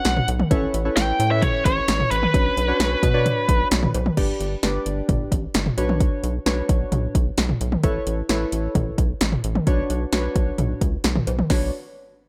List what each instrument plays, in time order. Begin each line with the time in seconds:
Already playing: synth keys C#4 D4 F#4 B4 C#5, lead electric guitar F#5
0.05 analog synth bass B1, snare, closed hi-hat
0.16 mid tom
0.28 analog synth bass B1, closed hi-hat
0.40 mid tom
0.51 analog synth bass A1, synth keys C#4 E4 A4 B4 C#5, kick, closed hi-hat
0.74 analog synth bass A1, closed hi-hat
0.85 synth keys C#4 E4 A4 B4 C#5
0.97 analog synth bass A1, lead electric guitar G5, snare, closed hi-hat
1.20 analog synth bass A2, closed hi-hat
1.31 synth keys C#4 E4 A4 B4 C#5, lead electric guitar E5
1.42 lead electric guitar C#5, kick, closed hi-hat, mid tom
1.65 analog synth bass A1, lead electric guitar C#5, kick, closed hi-hat, cowbell
1.88 analog synth bass A1, snare, closed hi-hat
2.00 mid tom
2.11 analog synth bass A1, lead electric guitar B4, closed hi-hat
2.23 mid tom
2.34 analog synth bass B1, synth keys C#4 D4 F#4 B4 C#5, kick, closed hi-hat
2.57 analog synth bass B1, closed hi-hat
2.68 synth keys C#4 D4 F#4 B4 C#5
2.80 analog synth bass B1, snare, closed hi-hat
3.03 analog synth bass B2, kick, closed hi-hat
3.14 synth keys D4 F#4 B4 C#5 D5
3.26 closed hi-hat, mid tom
3.49 analog synth bass B1, kick, closed hi-hat
3.71 analog synth bass B1, snare, closed hi-hat
3.83 mid tom
3.94 analog synth bass B1, closed hi-hat, cowbell
4.06 mid tom
4.17 analog synth bass G1, synth keys D4 G4 B4 D5, kick, closed hi-hat, crash
4.40 analog synth bass G1, closed hi-hat
4.63 analog synth bass G1, synth keys D4 G4 B4 D5, snare, closed hi-hat
4.86 analog synth bass G1, closed hi-hat
5.09 analog synth bass G1, kick, closed hi-hat, mid tom
5.32 analog synth bass A1, kick, closed hi-hat
5.54 analog synth bass G1, snare, closed hi-hat
5.66 mid tom
5.77 analog synth bass B1, synth keys D4 F#4 B4 C#5, closed hi-hat
5.89 mid tom
6.00 kick, closed hi-hat
6.23 analog synth bass B1, closed hi-hat
6.46 analog synth bass B1, synth keys D4 F#4 B4 C#5, snare, closed hi-hat
6.69 analog synth bass B1, kick, closed hi-hat
6.92 analog synth bass B1, closed hi-hat, mid tom
7.15 analog synth bass B1, kick, closed hi-hat
7.38 analog synth bass B1, snare, closed hi-hat
7.49 mid tom
7.61 analog synth bass B1, closed hi-hat
7.72 mid tom
7.83 analog synth bass A1, synth keys E4 A4 B4 C#5, kick, closed hi-hat
8.06 analog synth bass A1, closed hi-hat
8.29 analog synth bass A1, synth keys E4 A4 B4 C#5, snare, closed hi-hat
8.52 analog synth bass A1, closed hi-hat
8.75 analog synth bass A1, kick, closed hi-hat, mid tom
8.98 analog synth bass B1, kick, closed hi-hat
9.21 analog synth bass A1, snare, closed hi-hat
9.32 mid tom
9.44 analog synth bass A1, closed hi-hat
9.55 mid tom
9.67 analog synth bass B1, synth keys D4 F#4 B4 C#5, kick, closed hi-hat
9.90 analog synth bass B1, closed hi-hat
10.13 analog synth bass B1, synth keys D4 F#4 B4 C#5, snare, closed hi-hat
10.36 analog synth bass B1, kick, closed hi-hat
10.58 analog synth bass B1, closed hi-hat, mid tom
10.81 analog synth bass C#2, kick, closed hi-hat
11.04 analog synth bass B1, snare, closed hi-hat
11.16 mid tom
11.27 analog synth bass B1, closed hi-hat, cowbell
11.39 mid tom
11.50 analog synth bass B1, synth keys D4 F#4 B4 C#5, kick, snare, open hi-hat